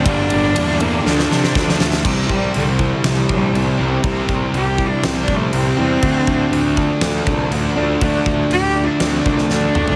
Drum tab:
CC |----------------|x---x---x---x---|x---x---x---x---|x---x---x---x---|
RD |x-x-x-x---------|----------------|----------------|----------------|
SD |----o---oooooooo|--------o-------|--------o-------|--------o-------|
T2 |----------------|----------------|----------------|----------------|
FT |----------------|----------------|----------------|----------------|
BD |o-----------o---|o-o---o---o-----|o-o---o---o-----|o-o---o---o-----|

CC |x---x---x-------|
RD |----------------|
SD |--------o--oo---|
T2 |--------------o-|
FT |---------------o|
BD |o-o-------o-----|